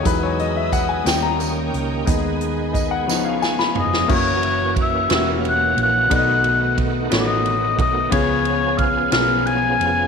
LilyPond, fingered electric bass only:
\new Staff \with { instrumentName = "Fingered electric bass" } { \clef bass \time 6/8 \key cis \dorian \tempo 4. = 60 e,4. dis,4 cis,8 | dis,4. cis,4 eis,,8 | \key fis \phrygian fis,,4. e,,4 ais,,8 | b,,4. a,,4 b,,8 |
cis,4. b,,4 eis,,8 | }